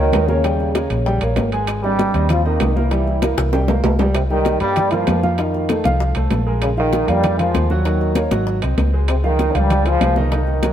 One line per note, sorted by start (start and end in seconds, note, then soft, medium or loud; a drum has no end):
0.00 0.10 C#2 loud
0.00 0.27 D#3 loud
0.00 0.23 A#3 medium
0.00 0.27 D#4 medium
0.00 0.24 A#4 medium
0.00 0.24 C#5 medium
0.13 0.85 D#2 medium
0.13 high bongo soft
0.13 low bongo medium
0.13 high conga medium
0.13 high timbale loud
0.13 low timbale medium
0.28 1.21 C#3 medium
0.28 0.42 A#3 medium
0.28 1.22 C#4 medium
0.28 0.42 A#4 medium
0.28 0.42 C#5 medium
0.28 high conga medium
0.44 0.70 G3 medium
0.44 0.70 G4 medium
0.44 0.70 G5 medium
0.44 high bongo medium
0.44 high conga soft
0.44 high timbale medium
0.60 high bongo soft
0.60 high conga soft
0.75 1.01 A#3 medium
0.75 1.01 A#4 medium
0.75 1.01 C#5 medium
0.75 high bongo medium
0.75 high conga medium
0.75 high timbale medium
0.75 low timbale medium
0.90 1.19 A#1 medium
0.90 high bongo soft
0.90 high timbale medium
1.06 1.19 G3 medium
1.06 1.19 G4 medium
1.06 1.19 G5 medium
1.06 high bongo medium
1.06 high conga soft
1.21 1.36 A#1 medium
1.21 1.47 A#3 medium
1.21 1.47 A#4 medium
1.21 1.47 C#5 medium
1.21 high bongo soft
1.21 high conga soft
1.21 high timbale loud
1.36 2.09 G#1 medium
1.36 high bongo soft
1.36 low bongo medium
1.36 high conga medium
1.36 high timbale medium
1.36 low timbale medium
1.52 1.78 G#3 medium
1.52 1.78 G#4 medium
1.52 1.78 G#5 medium
1.52 high conga soft
1.52 high timbale medium
1.67 high bongo medium
1.67 high conga soft
1.67 high timbale loud
1.83 2.27 G2 medium
1.83 2.26 G3 loud
1.83 2.09 C4 medium
1.83 2.09 C5 medium
1.83 2.09 D#5 medium
1.83 high bongo soft
1.83 high conga soft
1.99 high bongo soft
1.99 high conga medium
1.99 high timbale medium
1.99 low timbale medium
2.14 2.57 D#2 loud
2.14 2.39 C4 medium
2.14 2.40 C5 medium
2.14 2.40 D#5 medium
2.14 high bongo soft
2.14 high conga soft
2.14 high timbale medium
2.29 2.45 F3 loud
2.29 2.46 F4 medium
2.29 high bongo medium
2.29 high conga soft
2.29 low conga medium
2.29 high timbale medium
2.45 2.74 D#3 loud
2.45 2.70 C4 medium
2.45 2.75 D#4 medium
2.45 2.71 C5 medium
2.45 2.71 D#5 medium
2.45 high bongo soft
2.45 high conga soft
2.60 3.32 C2 medium
2.60 high bongo soft
2.60 low bongo medium
2.60 high conga medium
2.60 high timbale loud
2.60 low timbale medium
2.76 3.65 E3 medium
2.76 2.89 A#3 medium
2.76 3.66 E4 medium
2.76 2.89 A#4 medium
2.76 2.89 C5 medium
2.76 high conga medium
2.91 3.17 G3 medium
2.91 3.17 G4 medium
2.91 3.17 G5 medium
2.91 high bongo medium
2.91 high conga soft
2.91 high timbale medium
3.07 high bongo soft
3.07 high conga soft
3.22 3.48 A#3 medium
3.22 3.48 A#4 medium
3.22 3.48 C5 medium
3.22 high bongo medium
3.22 high conga medium
3.22 high timbale medium
3.22 low timbale medium
3.38 3.81 C2 loud
3.38 high bongo loud
3.38 high timbale medium
3.53 3.66 G3 medium
3.53 3.66 G4 medium
3.53 3.66 G5 medium
3.53 high bongo medium
3.53 high conga soft
3.53 high timbale medium
3.68 3.94 A#3 medium
3.68 3.94 A#4 medium
3.68 3.94 C5 medium
3.68 low bongo loud
3.68 high conga soft
3.68 low timbale medium
3.84 4.55 C2 medium
3.84 high conga medium
3.84 low timbale loud
3.99 4.12 G3 medium
3.99 4.12 G4 medium
3.99 4.12 G5 medium
3.99 low bongo medium
3.99 high conga soft
3.99 low timbale loud
4.15 4.22 C3 medium
4.15 4.22 C4 medium
4.15 high bongo medium
4.15 high conga soft
4.15 high timbale loud
4.30 4.59 D#3 loud
4.30 4.56 G3 medium
4.30 4.59 D#4 medium
4.30 4.56 G4 medium
4.30 4.56 G5 medium
4.30 high bongo soft
4.30 high conga soft
4.45 high bongo medium
4.45 high conga medium
4.45 high timbale medium
4.60 5.04 G2 medium
4.60 4.90 G2 medium
4.60 4.90 G3 loud
4.60 4.87 A#3 medium
4.60 4.87 A#4 medium
4.60 4.87 C5 medium
4.60 high bongo soft
4.60 high conga soft
4.60 high timbale medium
4.76 high bongo medium
4.76 high conga soft
4.76 low conga medium
4.76 high timbale medium
4.91 5.23 F3 loud
4.91 5.17 A#3 medium
4.91 5.23 F4 medium
4.91 5.18 A#4 medium
4.91 5.18 C5 medium
4.91 high bongo soft
4.91 high conga soft
4.91 low conga medium
4.91 high timbale medium
5.07 5.79 F2 medium
5.07 high bongo soft
5.07 low bongo medium
5.07 high conga medium
5.07 high timbale loud
5.07 low timbale medium
5.23 5.36 F3 medium
5.23 5.36 F4 medium
5.23 5.36 F5 medium
5.23 high conga medium
5.38 5.96 D#3 medium
5.38 5.64 F3 medium
5.38 5.96 D#4 medium
5.38 5.64 F4 medium
5.38 5.64 F5 medium
5.38 high bongo medium
5.38 high conga soft
5.38 high timbale medium
5.54 high bongo soft
5.54 high conga soft
5.69 5.82 A3 medium
5.69 5.82 A4 medium
5.69 5.82 C5 medium
5.69 high bongo medium
5.69 high conga medium
5.69 high timbale medium
5.84 6.13 C2 medium
5.84 6.10 F3 medium
5.84 6.10 F4 medium
5.84 6.10 F5 medium
5.84 high bongo soft
5.84 high conga medium
5.84 high timbale medium
6.00 high bongo medium
6.00 high conga soft
6.15 6.30 C2 medium
6.15 6.41 A3 medium
6.15 6.41 A4 medium
6.15 6.41 C5 medium
6.15 high bongo soft
6.15 high conga soft
6.15 high timbale medium
6.31 7.03 A#1 medium
6.31 high bongo soft
6.31 low bongo medium
6.31 high conga medium
6.31 high timbale medium
6.31 low timbale medium
6.47 6.72 G#3 medium
6.47 6.72 G#4 medium
6.47 6.72 A#4 medium
6.62 6.70 C#3 medium
6.62 6.70 C#4 medium
6.62 high bongo medium
6.62 high conga soft
6.62 high timbale loud
6.77 7.06 D#3 loud
6.77 7.03 F3 medium
6.77 7.06 D#4 medium
6.77 7.03 F4 medium
6.77 7.03 F5 medium
6.77 high bongo soft
6.77 high conga soft
6.93 high bongo medium
6.93 high conga medium
6.93 high timbale medium
7.08 7.51 F2 loud
7.08 7.39 G2 medium
7.08 7.39 G3 loud
7.08 7.33 A#3 medium
7.08 7.34 F4 medium
7.08 7.34 A#4 medium
7.08 high bongo soft
7.08 high conga soft
7.08 high timbale medium
7.24 high bongo medium
7.24 high conga soft
7.24 low conga medium
7.24 high timbale medium
7.39 7.70 F3 loud
7.39 7.65 G#3 medium
7.39 7.70 F4 medium
7.39 7.65 G#4 medium
7.39 7.65 A#4 medium
7.39 high bongo soft
7.39 high conga soft
7.39 low conga medium
7.39 high timbale medium
7.54 8.26 D#2 medium
7.54 high bongo soft
7.54 low bongo medium
7.54 high conga medium
7.54 high timbale medium
7.70 7.83 F#3 medium
7.70 7.83 F#4 medium
7.70 7.83 F#5 medium
7.70 high conga medium
7.85 8.43 D#3 medium
7.85 8.11 F#3 medium
7.85 8.43 D#4 medium
7.85 8.11 F#4 medium
7.85 8.11 F#5 medium
7.85 high bongo medium
7.85 high conga soft
7.85 high timbale medium
8.01 high bongo soft
8.01 high conga soft
8.15 8.29 A#3 medium
8.15 8.29 A#4 medium
8.15 8.29 C#5 medium
8.15 high bongo medium
8.15 high conga medium
8.15 high timbale medium
8.31 8.60 G#1 loud
8.31 8.57 F#3 medium
8.31 8.57 F#4 medium
8.31 8.57 F#5 medium
8.31 high bongo soft
8.31 high conga loud
8.31 high timbale medium
8.47 high bongo medium
8.47 high conga soft
8.62 8.77 C2 medium
8.62 8.88 C4 medium
8.62 8.88 C5 medium
8.62 8.88 D#5 medium
8.62 high bongo soft
8.62 high conga soft
8.62 high timbale medium
8.77 9.49 C#2 medium
8.77 high bongo soft
8.77 low bongo medium
8.77 high conga medium
8.77 high timbale medium
8.77 low timbale medium
8.93 9.19 G#3 medium
8.93 9.19 G#4 medium
8.93 9.19 C5 medium
9.08 9.16 C3 medium
9.08 9.16 C4 medium
9.08 high bongo medium
9.08 high conga soft
9.08 high timbale loud
9.24 9.53 D#3 loud
9.24 9.49 F3 medium
9.24 9.54 D#4 loud
9.24 9.49 F4 medium
9.24 9.50 F5 medium
9.24 high bongo soft
9.24 high conga soft
9.39 high bongo medium
9.39 high conga medium
9.39 high timbale medium
9.55 9.98 C#2 medium
9.55 9.87 G2 medium
9.55 9.80 F3 medium
9.55 9.86 G3 loud
9.55 9.80 F4 medium
9.55 9.80 C5 medium
9.55 high bongo soft
9.55 high conga soft
9.55 high timbale medium
9.70 high bongo medium
9.70 high conga soft
9.70 low conga medium
9.70 high timbale medium
9.86 10.17 F3 loud
9.86 10.11 G#3 medium
9.86 10.18 F4 medium
9.86 10.11 G#4 medium
9.86 10.11 C5 medium
9.86 high bongo soft
9.86 high conga soft
9.86 high timbale medium
10.01 10.73 C2 medium
10.01 high bongo soft
10.01 low bongo medium
10.01 high conga medium
10.01 high timbale loud
10.01 low timbale medium
10.16 10.30 D#3 medium
10.16 10.30 D#4 medium
10.16 10.30 D#5 medium
10.16 high conga medium
10.32 10.57 D#3 medium
10.32 10.73 D#3 medium
10.32 10.58 D#4 medium
10.32 10.73 D#4 medium
10.32 10.58 D#5 medium
10.32 high bongo medium
10.32 high conga soft
10.32 high timbale medium
10.47 high bongo soft
10.47 high conga soft
10.63 10.73 F#3 medium
10.63 10.73 F#4 medium
10.63 10.73 A#4 medium
10.63 high bongo medium
10.63 high conga medium
10.63 high timbale medium